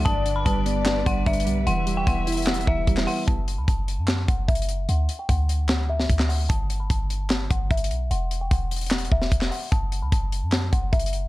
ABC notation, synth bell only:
X:1
M:4/4
L:1/16
Q:1/4=149
K:F#phr
V:1 name="Synth bell"
a3 b a6 f2 e4 | f3 g f6 e4 f2 | a3 b a6 f2 e4 | f3 g f6 e4 f2 |
a3 b a6 f2 e4 | f3 g f6 e4 f2 | a3 b a6 f2 e4 |]